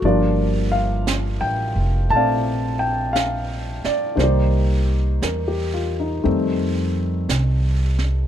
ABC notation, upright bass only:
X:1
M:4/4
L:1/8
Q:"Swing" 1/4=58
K:Gm
V:1 name="Upright bass" clef=bass
G,,,2- (3G,,, A,,, F,,, B,,,3 z | C,,2 =E,,2 F,,2 C,,2 |]